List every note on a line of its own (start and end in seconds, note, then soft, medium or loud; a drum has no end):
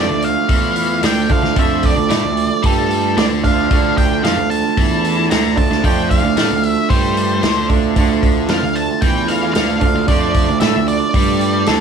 0.00 1.33 D3 medium
0.00 1.32 F3 medium
0.00 1.30 A3 medium
0.00 1.29 D4 medium
0.00 0.24 D5 medium
0.09 0.34 D2 medium
0.09 0.31 D3 medium
0.22 1.00 F5 medium
0.22 open hi-hat soft
0.49 0.99 E2 medium
0.49 1.02 E3 loud
0.49 kick loud
0.49 open hi-hat medium
0.76 open hi-hat medium
1.03 1.28 D2 medium
1.03 1.28 D3 medium
1.03 1.30 G5 medium
1.03 snare medium
1.03 open hi-hat medium
1.29 1.43 D2 medium
1.29 1.41 D3 medium
1.29 1.55 D3 medium
1.29 1.57 F3 medium
1.29 1.58 A3 medium
1.29 1.59 D4 medium
1.29 1.56 F5 medium
1.29 kick medium
1.29 open hi-hat soft
1.42 1.56 D2 medium
1.42 1.56 D3 medium
1.42 snare soft
1.56 1.94 F2 medium
1.56 3.46 D3 medium
1.56 1.96 F3 medium
1.56 3.45 F3 medium
1.56 3.44 A3 medium
1.56 3.43 D4 medium
1.56 1.86 E5 medium
1.56 kick medium
1.56 open hi-hat medium
1.83 2.67 D5 medium
1.83 kick medium
1.83 open hi-hat soft
1.96 2.10 D2 medium
1.96 2.10 D3 medium
2.09 2.23 A2 loud
2.09 2.23 A3 medium
2.09 snare loud
2.09 open hi-hat medium
2.22 2.49 D2 medium
2.22 2.45 D3 medium
2.37 open hi-hat soft
2.63 3.14 G2 medium
2.63 3.16 G3 loud
2.63 3.15 A4 medium
2.63 kick medium
2.63 open hi-hat medium
2.91 open hi-hat soft
3.17 3.67 D2 medium
3.17 3.70 D3 loud
3.17 3.25 D5 medium
3.17 snare medium
3.17 open hi-hat medium
3.43 3.69 D3 medium
3.43 3.71 F3 medium
3.43 3.72 A3 medium
3.43 3.73 D4 medium
3.43 3.94 F5 medium
3.43 kick medium
3.43 open hi-hat soft
3.70 4.20 D2 medium
3.70 5.59 D3 medium
3.70 4.23 D3 loud
3.70 5.58 F3 medium
3.70 5.57 A3 loud
3.70 5.56 D4 medium
3.70 kick loud
3.70 open hi-hat medium
3.98 4.24 G5 loud
3.98 kick medium
3.98 open hi-hat soft
4.24 4.37 F2 medium
4.24 4.37 F3 medium
4.24 4.49 F5 medium
4.24 snare medium
4.24 open hi-hat medium
4.37 4.62 D2 medium
4.37 4.59 D3 medium
4.50 5.27 A5 loud
4.50 open hi-hat soft
4.77 5.27 E2 medium
4.77 5.30 E3 medium
4.77 kick medium
4.77 open hi-hat medium
5.04 open hi-hat soft
5.31 5.56 D2 medium
5.31 5.56 D3 medium
5.31 5.58 A#5 loud
5.31 snare loud
5.31 open hi-hat medium
5.56 5.70 D2 medium
5.56 5.70 D3 medium
5.56 5.82 D3 medium
5.56 5.83 F3 medium
5.56 5.84 A3 medium
5.56 5.85 D4 medium
5.56 5.85 A5 medium
5.56 kick medium
5.56 open hi-hat soft
5.71 5.83 D2 medium
5.71 5.83 D3 medium
5.71 snare soft
5.82 6.21 F2 medium
5.82 7.73 D3 medium
5.82 7.71 F3 medium
5.82 6.23 F3 loud
5.82 7.70 A3 loud
5.82 7.69 D4 loud
5.82 6.09 G5 loud
5.82 kick medium
5.82 open hi-hat medium
6.10 6.67 F5 loud
6.10 kick medium
6.10 open hi-hat medium
6.24 6.36 D2 medium
6.24 6.38 D3 medium
6.37 6.50 A2 medium
6.37 6.50 A3 medium
6.37 snare medium
6.37 open hi-hat medium
6.50 6.75 D2 medium
6.50 6.72 D3 medium
6.63 open hi-hat soft
6.67 6.93 E5 loud
6.90 7.40 G2 medium
6.90 7.43 G3 medium
6.90 7.66 C5 medium
6.90 kick loud
6.90 open hi-hat medium
7.17 open hi-hat soft
7.42 7.93 D2 medium
7.42 7.95 D3 loud
7.42 snare loud
7.42 open hi-hat medium
7.69 7.95 D3 medium
7.69 7.97 F3 medium
7.69 7.98 A3 medium
7.69 7.99 D4 medium
7.69 kick medium
7.69 open hi-hat soft
7.95 8.46 D2 medium
7.95 9.83 D3 medium
7.95 8.49 D3 loud
7.95 9.82 F3 medium
7.95 9.81 A3 medium
7.95 9.79 D4 medium
7.95 kick medium
7.95 open hi-hat medium
8.23 kick medium
8.23 open hi-hat soft
8.48 8.62 F2 medium
8.48 8.62 F3 loud
8.48 8.77 F5 medium
8.48 snare loud
8.48 open hi-hat medium
8.63 8.88 D2 medium
8.63 8.84 D3 medium
8.75 9.01 A5 loud
8.75 open hi-hat soft
9.02 9.52 E2 medium
9.02 9.55 E3 medium
9.02 9.30 G5 loud
9.02 kick loud
9.02 open hi-hat medium
9.28 9.53 F5 medium
9.28 open hi-hat soft
9.54 9.80 D2 medium
9.54 9.82 D3 medium
9.54 10.04 F5 loud
9.54 snare loud
9.54 open hi-hat medium
9.80 9.94 D2 medium
9.80 9.95 D3 medium
9.80 10.06 D3 medium
9.80 10.08 F3 medium
9.80 10.09 A3 medium
9.80 10.10 D4 medium
9.80 kick medium
9.80 open hi-hat soft
9.96 10.07 D2 medium
9.96 10.08 D3 medium
10.07 10.45 F2 medium
10.07 11.80 D3 medium
10.07 11.80 F3 medium
10.07 10.48 F3 loud
10.07 11.80 A3 medium
10.07 11.80 D4 medium
10.07 10.58 D5 loud
10.07 kick medium
10.07 open hi-hat medium
10.34 kick medium
10.34 open hi-hat medium
10.49 10.61 D2 medium
10.49 10.62 D3 medium
10.60 10.74 A2 loud
10.60 10.74 A3 medium
10.60 10.88 E5 loud
10.60 snare medium
10.60 open hi-hat medium
10.76 11.00 D2 medium
10.76 10.97 D3 medium
10.88 11.70 D5 medium
10.88 open hi-hat soft
11.14 11.63 G2 medium
11.14 11.67 G3 loud
11.14 kick loud
11.14 open hi-hat medium
11.41 open hi-hat soft
11.66 11.80 D2 loud
11.66 11.80 D3 medium
11.66 11.80 A4 medium
11.66 snare medium
11.66 open hi-hat medium